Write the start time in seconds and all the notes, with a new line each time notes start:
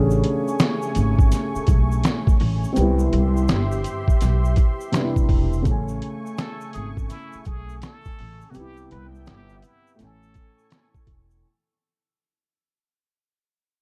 Already playing: A1 C#3 A3 C#4 D4 G4 G#4 G#5 C#6
0.11 shaker
0.24 closed hi-hat
0.48 shaker
0.59 finger snap, snare, closed hi-hat, shaker
0.82 shaker
0.95 G#1, closed hi-hat, shaker
1.19 kick, shaker
1.32 snare, closed hi-hat, shaker
1.56 muted upright bass stroke, shaker
1.67 B1, kick, closed hi-hat, shaker
1.92 shaker
2.04 finger snap, snare, closed hi-hat, shaker
2.27 kick, shaker
2.40 A1, open hi-hat
2.64 shaker
2.73 G3 C4 G4 E5 C6, closed hi-hat, shaker
2.77 C2 B3
2.81 E4
2.99 shaker
3.13 C2, closed hi-hat
3.37 shaker
3.48 G1, finger snap, snare, closed hi-hat, shaker
3.72 shaker
3.84 closed hi-hat, shaker
4.08 kick, shaker
4.21 B1, snare, closed hi-hat, shaker
4.45 shaker
4.56 kick, closed hi-hat, shaker
4.81 shaker
4.92 C3 G3 B3, finger snap, snare, closed hi-hat, shaker
4.97 D4
5.03 E4
5.16 kick, shaker
5.29 E1, kick, open hi-hat
5.53 shaker
5.62 A1 C#3 A3 G#5 C#6, kick, closed hi-hat, shaker
5.68 C#4 G#5
5.89 shaker
6.02 closed hi-hat
6.26 shaker
6.38 A4, finger snap, snare, closed hi-hat, shaker
6.61 shaker
6.73 G#1 G#4, closed hi-hat, shaker
6.97 kick, shaker
7.09 E4, snare, closed hi-hat, shaker
7.33 muted upright bass stroke, shaker
7.45 B1 G#4, kick, closed hi-hat, shaker
7.69 shaker
7.82 A4, finger snap, snare, closed hi-hat, shaker
8.05 kick, shaker
8.19 A1, open hi-hat
8.41 shaker
8.50 C3 F#4
8.54 C2 G3 B3 G4 E5 G5, closed hi-hat, shaker
8.60 E4
8.77 shaker
8.91 C2 B4, closed hi-hat
9.15 shaker
9.26 G1 G4, finger snap, snare, closed hi-hat, shaker
9.49 shaker
9.62 E4, closed hi-hat, shaker
9.87 shaker
9.96 A2 A3 A4 G#5 C#6, closed hi-hat, shaker
10.00 A1 C#4 A4, snare
10.05 G#5
10.23 shaker
10.34 kick, closed hi-hat, shaker
10.59 shaker
10.70 finger snap, snare, closed hi-hat, shaker
10.94 kick, shaker
11.07 E1, kick, closed hi-hat
11.31 shaker